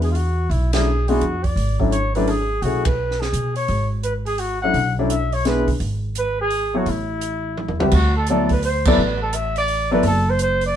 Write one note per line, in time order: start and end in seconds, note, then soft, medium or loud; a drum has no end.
0.00 0.46 E2 medium
0.00 0.13 G#3 medium
0.00 0.13 B3 soft
0.00 0.13 D4 soft
0.00 0.13 E4 soft
0.00 0.13 F#4 medium
0.00 0.10 G#4 medium
0.00 open hi-hat soft
0.11 0.17 F4 medium
0.11 open hi-hat soft
0.16 0.52 F#4 medium
0.50 1.17 B1 medium
0.50 0.73 E4 medium
0.50 open hi-hat soft
0.73 0.85 F#3 medium
0.73 0.85 A3 soft
0.73 0.85 C#4 soft
0.73 0.86 D4 medium
0.73 0.85 E4 medium
0.73 1.10 G#4 medium
0.73 snare medium
0.73 ride medium
1.08 1.20 G#3 medium
1.08 1.21 B3 medium
1.08 1.20 D4 medium
1.08 1.21 E4 medium
1.08 1.46 F#4 medium
1.08 1.21 G#4 medium
1.08 open hi-hat soft
1.21 1.54 F2 medium
1.21 closed hi-hat soft
1.44 1.79 D5 medium
1.44 kick soft
1.44 open hi-hat soft
1.56 2.58 G#1 medium
1.56 open hi-hat soft
1.79 1.91 F#3 medium
1.79 1.91 A3 medium
1.79 1.91 C#4 medium
1.79 1.91 D4 medium
1.79 1.92 E4 medium
1.79 kick soft
1.92 2.13 C#5 medium
1.92 closed hi-hat soft
2.15 2.27 F#3 medium
2.15 2.27 A3 medium
2.15 2.27 C#4 medium
2.15 2.27 D4 medium
2.15 2.27 E4 medium
2.15 2.31 B4 medium
2.15 open hi-hat soft
2.28 2.64 G#4 medium
2.28 open hi-hat soft
2.62 3.29 B1 medium
2.62 2.84 A3 medium
2.62 2.84 C#4 soft
2.62 2.84 E4 soft
2.62 2.87 F#4 medium
2.62 2.84 F#4 soft
2.62 2.84 G#4 medium
2.62 open hi-hat soft
2.85 3.22 B4 medium
2.85 kick medium
2.85 ride medium
3.11 snare soft
3.20 3.56 G#4 medium
3.20 snare soft
3.33 3.66 B2 medium
3.33 closed hi-hat medium
3.56 3.89 C#5 medium
3.56 open hi-hat soft
3.68 4.71 G#1 medium
3.68 open hi-hat soft
4.03 4.14 B4 medium
4.03 closed hi-hat soft
4.26 4.41 G#4 medium
4.26 open hi-hat soft
4.38 4.62 F#4 medium
4.38 open hi-hat soft
4.62 4.74 F#3 medium
4.62 4.74 A3 medium
4.62 4.74 C#4 medium
4.62 4.75 D4 medium
4.62 4.75 E4 medium
4.62 4.95 F#5 medium
4.73 5.63 B1 medium
4.73 open hi-hat soft
4.99 5.10 F#3 medium
4.99 5.10 A3 medium
4.99 5.10 C#4 medium
4.99 5.10 D4 medium
4.99 5.10 E4 medium
5.10 5.35 E5 medium
5.10 closed hi-hat medium
5.32 5.46 C#5 medium
5.32 open hi-hat soft
5.45 5.66 G#3 medium
5.45 5.66 B3 medium
5.45 5.66 D4 medium
5.45 5.66 E4 medium
5.45 5.66 G#4 medium
5.45 5.67 B4 medium
5.45 snare soft
5.45 closed hi-hat medium
5.68 5.79 B2 medium
5.68 kick soft
5.68 open hi-hat soft
5.80 6.82 G#1 medium
5.80 open hi-hat soft
6.15 6.39 B4 medium
6.15 closed hi-hat medium
6.41 6.79 G#4 medium
6.50 open hi-hat soft
6.74 6.85 F#3 medium
6.74 6.86 B3 medium
6.74 6.86 E4 medium
6.74 6.91 F#4 medium
6.74 6.86 A4 medium
6.74 6.86 C#5 medium
6.86 7.65 A1 medium
6.86 7.80 E4 medium
6.86 open hi-hat soft
7.21 closed hi-hat medium
7.57 mid tom soft
7.68 7.80 E2 medium
7.68 mid tom soft
7.79 7.91 C#2 medium
7.79 7.91 G3 medium
7.79 7.92 C4 medium
7.79 7.92 F#4 medium
7.79 7.86 G4 medium
7.79 7.91 B4 medium
7.79 7.92 E5 medium
7.79 mid tom medium
7.92 8.94 D2 medium
7.92 8.14 F#4 medium
7.92 kick medium
7.92 crash medium
8.17 8.28 A4 medium
8.27 8.49 F#3 medium
8.27 8.49 B3 medium
8.27 8.49 E4 medium
8.27 8.50 A4 medium
8.27 closed hi-hat medium
8.31 8.50 A4 medium
8.31 8.50 D5 medium
8.49 8.63 B4 medium
8.49 kick medium
8.49 open hi-hat soft
8.63 8.89 C5 medium
8.63 open hi-hat medium
8.85 8.98 F#3 medium
8.85 8.98 B3 medium
8.85 8.98 E4 medium
8.85 8.98 A4 medium
8.85 9.22 B4 medium
8.85 8.98 D5 loud
8.85 kick medium
8.85 crash medium
8.97 10.00 A1 loud
9.22 9.36 A4 medium
9.33 9.56 E5 medium
9.33 closed hi-hat medium
9.56 9.90 D5 loud
9.56 open hi-hat soft
9.68 open hi-hat soft
9.91 10.03 F#3 medium
9.91 10.03 B3 medium
9.91 10.03 E4 medium
9.91 10.03 A4 medium
9.91 10.04 B4 medium
9.91 10.03 D5 medium
10.03 10.76 F#1 medium
10.03 10.31 A4 medium
10.03 open hi-hat soft
10.30 10.41 C5 medium
10.39 10.62 C5 medium
10.39 closed hi-hat medium
10.61 open hi-hat soft
10.66 10.76 D5 medium